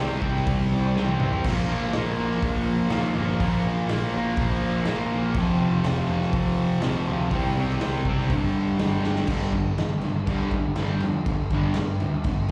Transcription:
Already playing: C3
0.00 C2 G3 C4
0.22 C2 G3 C4, kick
0.36 snare
0.47 C2, kick, open hi-hat
0.72 C2
0.95 C2 C3 G3, snare
0.99 C4
1.09 high tom
1.20 C2 G3 C4, mid tom
1.33 floor tom
1.44 A#1 A#2 F3, kick, open hi-hat, crash
1.48 A#3
1.69 A#1 F3 A#3
1.82 snare
1.93 A#1 A#2 F3 A#3, snare, open hi-hat
2.18 A#1 F3 A#3
2.31 snare
2.42 A#1, kick, open hi-hat
2.90 A#2 F3 A#3, snare, open hi-hat
2.94 D#2
3.16 G1 A#3
3.20 F3
3.40 A#1 A#2 F3 A#3, kick, open hi-hat
3.65 A#1 F3 A#3
3.88 A#1 A#2 F3 A#3, snare, open hi-hat
4.13 F3 A#3
4.17 A#1
4.37 A#1, kick, open hi-hat
4.63 A#1
4.85 A#1 A#2 F3, snare, open hi-hat
4.89 A#3
5.11 A#1 F3 A#3
5.34 F1 F2 C3, kick, open hi-hat
5.39 F3
5.59 F1 C3 F3
5.84 F1 F2 C3 F3, snare, open hi-hat
6.07 F1 C3 F3
6.22 snare
6.33 F1, kick, open hi-hat
6.81 F2 C3 F3, snare, open hi-hat
6.85 A#1
7.08 D2 C3 F3
7.31 C2 C3 G3, kick, open hi-hat
7.35 C4
7.57 C2 G3 C4
7.69 snare
7.81 C2 C3 G3 C4, snare, open hi-hat
8.05 F#1 C4, kick
8.10 G3
8.19 snare
8.30 G1 G2 D3, kick, open hi-hat
8.34 G3
8.56 G1
8.78 G1 G2 D3 G3, snare, open hi-hat
9.02 D3 G3, snare
9.07 G1
9.16 snare
9.27 G1 G2 D3 G3, kick, crash
9.52 G2 D3, kick, crash
9.78 G1 G2 D3, snare, crash
10.01 G2 D3, crash
10.07 G1
10.27 G1 G2 D3 G3, kick, crash
10.51 G1 G2 D3, kick, crash
10.75 G2, snare, crash
10.79 G1 D3 G3
11.00 F2 G2 D3, crash
11.26 G1 G2 D3, kick, crash
11.50 G1 G2 D3 G3, kick, crash
11.74 G2 D3, snare, crash
12.00 D2 G2 D3, crash
12.24 G1 G2 D3, kick, crash

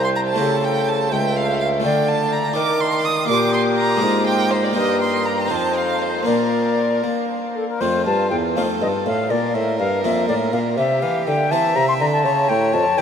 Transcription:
Already playing: C2 C4 E4 G4 C5
0.04 C6
0.16 A#5
0.28 A5
0.34 A3 E4 G4
0.39 C#3 A4
0.64 G5
0.89 A5
1.12 C#2 E5 G5
1.36 F5
1.60 F5
1.80 A3 F4 G5
1.84 D3 D5
2.08 A5
2.32 A#5
2.53 D#3 D#4 A#4 D6
2.80 C6
3.05 D#6
3.25 A#3 F4 A#4 D6
3.29 A#2 G4
3.53 C6
3.78 A#5
3.97 G#3 A#3 D4
4.01 G#2 F4 A#4
4.26 G5
4.51 C5
4.64 D5
4.71 A#3 D#4 A#4
4.75 G2 A#4 D#5
5.01 C6
5.26 A#5
5.46 C4 D#4 F4 C5
5.51 F2 A5
5.76 F5
6.01 C5
6.23 A#2 A#3 D4 F4 A#4 D5
6.27 A#2
7.03 A#3
7.55 A4
7.69 A#4
7.80 F2 A3 C4 F4 C5
8.06 G2 A5
8.30 E2 G5
8.56 F2 A3 D#4 F4 A4 F5
8.81 G2 D#5
9.06 A2 F5
9.30 A#2 A#4 D5
9.54 A2 E5
9.79 G2 F5
10.04 F2 A#3 D4 F4 E5
10.28 A2 D5
10.53 A#2 F5
10.77 C3 G4 E5
11.02 E3 F5
11.27 D3 G5
11.51 E3 C4 C5 E5 A5
11.76 C3 A#5
11.88 C6
12.00 D3 A#5
12.12 A5
12.25 C#3 C#5
12.49 A2 G5
12.73 F2 A5
12.97 E2 E4 A4 G5

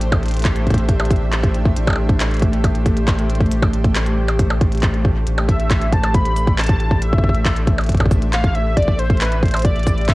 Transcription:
Already playing: A1 A3 D4 G4 C5 E5
0.01 closed hi-hat
0.12 kick, closed hi-hat, percussion blips
0.23 closed hi-hat
0.26 closed hi-hat
0.28 closed hi-hat
0.31 closed hi-hat
0.34 closed hi-hat
0.37 closed hi-hat
0.39 closed hi-hat
0.42 kick, clap, closed hi-hat
0.45 closed hi-hat
0.56 closed hi-hat
0.67 kick, closed hi-hat
0.70 kick, closed hi-hat
0.74 kick, closed hi-hat
0.78 closed hi-hat
0.89 kick, closed hi-hat
1.00 closed hi-hat, percussion blips
1.05 closed hi-hat
1.11 kick, closed hi-hat, shaker
1.16 closed hi-hat
1.32 clap, closed hi-hat
1.43 kick, closed hi-hat
1.54 closed hi-hat
1.65 kick
1.76 A1, closed hi-hat
1.87 kick, closed hi-hat, percussion blips
1.90 percussion blips
1.93 percussion blips
1.96 percussion blips
2.09 kick, closed hi-hat
2.20 clap, closed hi-hat
2.31 closed hi-hat
2.34 closed hi-hat
2.37 closed hi-hat
2.39 kick, closed hi-hat
2.42 closed hi-hat
2.53 closed hi-hat
2.64 kick, closed hi-hat, percussion blips
2.75 closed hi-hat
2.86 kick, closed hi-hat, shaker
2.97 closed hi-hat
3.08 kick, clap, closed hi-hat
3.19 closed hi-hat
3.30 closed hi-hat
3.35 closed hi-hat
3.41 kick, closed hi-hat
3.46 closed hi-hat
3.51 A1, closed hi-hat
3.62 kick, closed hi-hat, percussion blips
3.73 closed hi-hat
3.84 kick, closed hi-hat
3.95 clap, closed hi-hat
4.06 closed hi-hat
4.28 closed hi-hat, percussion blips
4.39 kick, closed hi-hat
4.50 percussion blips
4.61 kick, closed hi-hat
4.72 closed hi-hat
4.75 closed hi-hat
4.77 closed hi-hat
4.80 kick, clap, closed hi-hat
4.83 closed hi-hat
4.94 closed hi-hat
5.05 kick
5.27 A1, closed hi-hat
5.38 closed hi-hat, percussion blips
5.49 E5, kick, closed hi-hat
5.60 closed hi-hat
5.71 kick, clap, closed hi-hat
5.82 closed hi-hat
5.92 A5, kick, closed hi-hat
6.03 closed hi-hat, percussion blips
6.14 B5, kick, closed hi-hat
6.25 closed hi-hat
6.36 closed hi-hat, shaker
6.47 kick, closed hi-hat
6.58 A5, clap, closed hi-hat
6.61 closed hi-hat
6.64 closed hi-hat
6.66 kick, closed hi-hat
6.80 E5, closed hi-hat
6.91 kick
7.02 E5, closed hi-hat
7.13 kick
7.18 kick
7.24 kick
7.29 kick
7.35 closed hi-hat
7.46 kick, clap
7.57 closed hi-hat
7.68 kick, closed hi-hat
7.79 closed hi-hat, percussion blips
7.81 closed hi-hat
7.84 closed hi-hat
7.87 kick, closed hi-hat
7.90 closed hi-hat
7.92 closed hi-hat
7.95 kick, closed hi-hat
7.98 kick, closed hi-hat
8.00 closed hi-hat, percussion blips
8.06 kick
8.11 kick, closed hi-hat, shaker
8.22 closed hi-hat
8.33 F5, clap, closed hi-hat
8.44 kick, closed hi-hat
8.55 E5, closed hi-hat
8.77 A1 A3 D5, kick, closed hi-hat
8.83 closed hi-hat
8.88 kick
8.99 C5, closed hi-hat
9.10 kick, closed hi-hat
9.17 clap, closed hi-hat
9.21 B4, closed hi-hat
9.25 closed hi-hat
9.32 closed hi-hat
9.43 C5, kick, closed hi-hat
9.46 closed hi-hat
9.48 closed hi-hat
9.51 closed hi-hat
9.54 closed hi-hat, percussion blips
9.57 closed hi-hat
9.59 closed hi-hat
9.62 kick, closed hi-hat
9.65 D5, closed hi-hat
9.76 closed hi-hat
9.79 closed hi-hat
9.83 kick, closed hi-hat
9.87 closed hi-hat, shaker
9.98 closed hi-hat
10.01 closed hi-hat
10.05 E5, kick, clap, closed hi-hat
10.09 closed hi-hat

